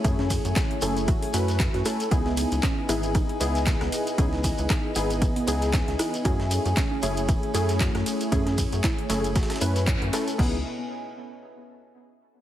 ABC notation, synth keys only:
X:1
M:4/4
L:1/8
Q:"Swing 16ths" 1/4=116
K:C#m
V:1 name="Synth keys"
[A,CEG]3 [A,CEG]2 [A,CEB]2 [A,CEA] | [B,DEG]3 [B,DEG]2 [B,DEG]3 | [B,DEG]3 [B,DEG]2 [B,DEG]3 | [A,CEG]3 [A,CEG]2 [A,CEG]3 |
[A,CEG]3 [A,CEG]2 [A,CEB]2 [A,CEA] | [B,DEG] z6 z |]